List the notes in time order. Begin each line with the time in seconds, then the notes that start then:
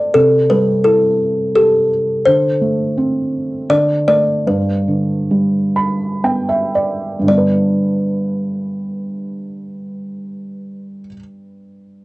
Already playing: D3 A3 F#4 A4 D5
0.14 C3 A4
0.50 G3 B4
0.84 E4 A4
1.56 G4 A4
2.25 D3 C5
2.61 A3
2.97 C4
3.69 D3 D5
4.08 A3 D5
4.47 G2 B4
4.88 D3
5.31 G3
5.76 B5
6.24 B3 G5
6.49 E5
6.75 D5
7.19 G2 D3
7.27 G3 B3 D5
7.34 D4 B4